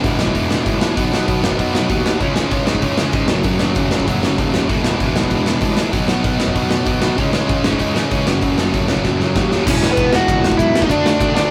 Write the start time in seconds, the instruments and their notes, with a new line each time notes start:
Already playing: distorted electric guitar E2 B2 E3
0.03 picked electric bass E1, distorted electric guitar E2 B2, overdriven electric guitar E3 G#3 B3 E4, kick, open hi-hat
0.19 picked electric bass B1, distorted electric guitar E2 B2, overdriven electric guitar E3 G#3 B3 E4, snare
0.27 kick
0.34 picked electric bass E1, distorted electric guitar E2 B2, overdriven electric guitar E3 G#3 B3 E4, kick, open hi-hat
0.49 picked electric bass E1, distorted electric guitar E2 B2 E3, overdriven electric guitar E4, snare
0.53 overdriven electric guitar E3 G#3 B3
0.64 picked electric bass A1, distorted electric guitar E2 B2, overdriven electric guitar E3 G#3 B3, kick, open hi-hat
0.69 overdriven electric guitar E4
0.80 distorted electric guitar E2 B2, overdriven electric guitar E3 G#3 B3 E4, snare
0.95 picked electric bass B1, overdriven electric guitar B2 F#3 B3 D#4, kick, open hi-hat
1.11 picked electric bass B1, overdriven electric guitar B2 F#3 B3 D#4, snare
1.26 picked electric bass B1, overdriven electric guitar B2 F#3 B3 D#4, kick, open hi-hat
1.43 picked electric bass F#2, overdriven electric guitar B2 F#3 B3 D#4, snare
1.51 kick
1.58 picked electric bass B1, overdriven electric guitar B2 F#3 B3 D#4, kick, open hi-hat
1.73 picked electric bass B1, overdriven electric guitar B2 F#3 B3 D#4, snare
1.89 picked electric bass D#2, overdriven electric guitar B2 F#3 B3 D#4, kick, open hi-hat
2.06 overdriven electric guitar B2 F#3 B3 D#4, snare
2.21 picked electric bass C#2, overdriven electric guitar C#3 E3 G#3 C#4, kick, open hi-hat
2.36 picked electric bass C#2, overdriven electric guitar C#3 E3 G#3 C#4, snare
2.51 picked electric bass C#2, overdriven electric guitar C#3 E3 G#3 C#4, kick, open hi-hat
2.67 picked electric bass G#2, overdriven electric guitar C#3 E3 G#3 C#4, snare
2.75 kick
2.82 picked electric bass C#2, overdriven electric guitar C#3 E3 G#3 C#4, kick, open hi-hat
2.98 picked electric bass C#2, overdriven electric guitar E3 G#3 C#4, snare
3.02 overdriven electric guitar C#3
3.12 picked electric bass G#2, overdriven electric guitar C#3 E3 G#3 C#4, kick, open hi-hat
3.28 picked electric bass F#1, overdriven electric guitar F#2 C#3, snare
3.32 overdriven electric guitar F#3 A3 C#4
3.43 picked electric bass F#1, overdriven electric guitar F#3 A3 C#4, kick, open hi-hat
3.47 overdriven electric guitar F#2 C#3
3.59 picked electric bass F#1, overdriven electric guitar F#2 C#3 F#3 A3 C#4, snare
3.75 picked electric bass F#1, overdriven electric guitar F#2 C#3 F#3 A3 C#4, kick, open hi-hat
3.91 picked electric bass C#2, overdriven electric guitar F#2 C#3 F#3 A3 C#4, snare
4.00 kick
4.07 picked electric bass F#1, overdriven electric guitar F#2 C#3 F#3 A3 C#4, kick, open hi-hat
4.22 picked electric bass F#1, overdriven electric guitar F#2 C#3 F#3 A3 C#4, snare
4.38 picked electric bass D#2, overdriven electric guitar F#2 C#3 F#3 A3 C#4, kick, open hi-hat
4.53 overdriven electric guitar F#2 C#3 F#3 A3 C#4, snare
4.68 picked electric bass E1, distorted electric guitar E2 B2, overdriven electric guitar E3 G#3 B3, kick, open hi-hat
4.72 overdriven electric guitar E4
4.84 picked electric bass E1, distorted electric guitar E2 B2, overdriven electric guitar E3 G#3 B3 E4, snare
5.00 picked electric bass E1, distorted electric guitar E2 B2, overdriven electric guitar E3 G#3 B3 E4, kick, open hi-hat
5.15 picked electric bass B1, distorted electric guitar E2 B2, overdriven electric guitar E3 G#3 B3 E4, snare
5.23 kick
5.30 picked electric bass E1, distorted electric guitar E2 B2, overdriven electric guitar E3 G#3 B3 E4, kick, open hi-hat
5.46 picked electric bass E1, distorted electric guitar E2 B2, overdriven electric guitar E3 G#3 B3 E4, snare
5.61 picked electric bass A1, distorted electric guitar E2 B2, overdriven electric guitar E3 G#3 B3 E4, kick, open hi-hat
5.76 distorted electric guitar E2 B2, overdriven electric guitar E3 G#3 B3 E4, snare
5.93 picked electric bass B1, overdriven electric guitar B2 F#3 B3 D#4, kick, open hi-hat
6.08 picked electric bass B1, overdriven electric guitar B2 F#3 B3 D#4, snare
6.24 picked electric bass B1, overdriven electric guitar B2 F#3 B3 D#4, kick, open hi-hat
6.39 picked electric bass F#2, overdriven electric guitar B2 F#3 B3 D#4, snare
6.48 kick
6.54 picked electric bass B1, overdriven electric guitar B2 F#3 B3 D#4, kick, open hi-hat
6.69 picked electric bass B1, overdriven electric guitar B2 F#3 B3 D#4, snare
6.85 picked electric bass B1, overdriven electric guitar B2 F#3 B3 D#4, kick, open hi-hat
7.01 overdriven electric guitar B2 F#3 B3 D#4, snare
7.17 picked electric bass C#2, overdriven electric guitar C#3 E3 G#3 C#4, kick, open hi-hat
7.32 picked electric bass C#2, overdriven electric guitar C#3 E3 G#3 C#4, snare
7.48 picked electric bass C#2, overdriven electric guitar C#3 E3 G#3 C#4, kick, open hi-hat
7.64 picked electric bass G#2, overdriven electric guitar C#3 E3 G#3 C#4, snare
7.73 kick
7.78 picked electric bass C#2, overdriven electric guitar C#3 E3 G#3 C#4, kick, open hi-hat
7.95 picked electric bass C#2, overdriven electric guitar C#3 E3 G#3 C#4, snare
8.09 picked electric bass C#2, overdriven electric guitar C#3 E3 G#3 C#4, kick, open hi-hat
8.26 picked electric bass F#1, overdriven electric guitar F#2 C#3 F#3 A3 C#4, snare
8.41 picked electric bass F#1, overdriven electric guitar F#2 C#3 F#3 A3 C#4, kick, open hi-hat
8.58 picked electric bass F#1, overdriven electric guitar F#2 C#3 F#3 A3 C#4, snare
8.73 picked electric bass F#1, overdriven electric guitar F#2 C#3 F#3 A3 C#4, kick, open hi-hat
8.88 picked electric bass C#2, overdriven electric guitar F#2 C#3 F#3, snare
8.92 overdriven electric guitar A3 C#4
8.97 kick
9.04 picked electric bass F#1, overdriven electric guitar F#2 C#3 F#3 A3 C#4, kick, snare
9.20 picked electric bass F#1, overdriven electric guitar F#2 C#3 F#3 A3 C#4, snare
9.36 picked electric bass D#2, overdriven electric guitar F#2 C#3 F#3 A3 C#4, kick, snare
9.51 overdriven electric guitar F#2 C#3 F#3 A3 C#4, snare
9.65 picked electric bass E1, distorted electric guitar E2 B2, overdriven electric guitar E3 G#3 B3, lead electric guitar C#4, kick, crash
9.70 overdriven electric guitar E4, lead electric guitar C#5
9.81 picked electric bass E1, snare
9.91 lead electric guitar B3 B4
9.97 picked electric bass E1, kick, ride
10.11 picked electric bass E1, distorted electric guitar E2 B2 E3, lead electric guitar F#4 F#5, snare
10.28 picked electric bass C#2, kick, ride
10.43 picked electric bass E1, snare
10.52 kick
10.57 picked electric bass B1, lead electric guitar E4 E5, kick, ride
10.74 picked electric bass D#2, snare
10.81 lead electric guitar D#4 D#5, kick
10.89 picked electric bass D2, overdriven electric guitar D3 A3 D4 F#4, lead electric guitar D4 D5, kick, ride
11.04 picked electric bass D2, snare
11.20 picked electric bass D2, kick, ride
11.33 picked electric bass D2, distorted electric guitar D3 A3 D4, lead electric guitar D4 D5, snare